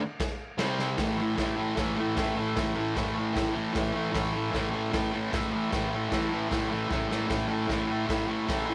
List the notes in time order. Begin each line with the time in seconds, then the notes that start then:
0.20 kick, snare, crash
0.58 C3 G3 C4, snare, crash
0.79 snare
0.98 A2 E3, kick, snare, open hi-hat
1.02 A3
1.17 A3
1.22 E3
1.37 A2 E3, kick, snare, open hi-hat
1.41 A3
1.57 A3
1.61 E3
1.76 A2 E3 A3, kick, snare, open hi-hat
1.96 A2 E3 A3
2.15 A2 E3, kick, snare, open hi-hat
2.20 A3
2.36 E3 A3
2.56 A2 E3 A3, kick, snare, open hi-hat
2.76 E3 A3
2.95 A2 E3 A3, kick, snare, open hi-hat
3.15 A3
3.19 E3
3.34 A2 E3, kick, snare, open hi-hat
3.39 A3
3.53 E3 A3
3.58 A2
3.73 A2 E3, kick, snare, open hi-hat
3.77 A3
3.93 E3 A3
4.12 A2 E3, kick, snare, open hi-hat
4.16 A3
4.33 E3 A3
4.52 A2 E3, kick, snare, open hi-hat
4.57 A3
4.72 A3
4.76 E3
4.91 A2 E3 A3, kick, snare, open hi-hat
5.12 A2 E3 A3
5.31 A2 E3 A3, kick, snare, open hi-hat
5.51 A3
5.55 E3
5.71 A2 E3 A3, kick, snare, open hi-hat
5.90 A3
5.95 E3
6.09 A2 E3, kick, snare, open hi-hat
6.13 A3
6.30 A3
6.34 E3
6.49 A2 E3, kick, snare, open hi-hat
6.53 A3
6.69 E3 A3
6.73 A2
6.89 A2 E3, kick, snare
6.93 A3
7.09 A3, snare
7.13 E3
7.28 A2 E3 A3, kick, snare, open hi-hat
7.48 A3
7.52 E3
7.68 A2 E3, kick, snare, open hi-hat
7.72 A3
7.87 A3
7.92 E3
8.07 A2 E3, kick, snare, open hi-hat
8.11 A3
8.27 E3 A3
8.31 A2
8.46 A2 E3 A3, kick, snare, open hi-hat
8.66 E3 A3